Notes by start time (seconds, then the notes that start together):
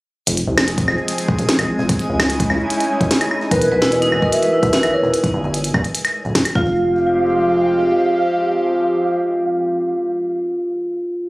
0.27 F1 F3 G#3 C4 G#4 G#5, closed hi-hat
0.37 closed hi-hat
0.47 C2
0.57 F1, snare, claves
0.68 closed hi-hat
0.78 kick, closed hi-hat
0.88 F1, claves
1.08 closed hi-hat
1.18 closed hi-hat
1.28 kick
1.39 D#1, closed hi-hat
1.49 snare, closed hi-hat
1.59 A#1, closed hi-hat, claves
1.79 F1
1.89 C#4 D#4 E4, kick, closed hi-hat
1.99 closed hi-hat
2.10 C#2
2.20 C#2, snare, claves
2.30 closed hi-hat
2.40 kick, closed hi-hat
2.50 C#2, claves
2.70 closed hi-hat
2.80 closed hi-hat
3.01 G#1, kick, closed hi-hat
3.11 snare, closed hi-hat
3.21 closed hi-hat, claves
3.31 claves
3.51 E1 E3 B3 F#4 A#4 B4, kick, closed hi-hat
3.62 closed hi-hat
3.72 B1 B4
3.82 E1 E4, snare
3.92 D#5, closed hi-hat
4.02 D#4, closed hi-hat
4.12 E1, claves
4.22 A#4, kick
4.32 E5, closed hi-hat
4.43 B4, closed hi-hat
4.53 E4
4.63 B1, kick, closed hi-hat
4.73 D#4, snare, closed hi-hat
4.83 G#1, closed hi-hat, claves
4.93 A#4 C#5
5.03 E1
5.14 closed hi-hat
5.24 kick, closed hi-hat
5.34 G1
5.44 G1
5.54 closed hi-hat
5.64 closed hi-hat
5.74 G1, kick, claves
5.84 closed hi-hat
5.95 closed hi-hat
6.05 closed hi-hat, claves
6.25 D1
6.35 kick, snare, closed hi-hat
6.45 closed hi-hat, claves
6.55 F1 F3 G#3 C4 F4 G4 F5, kick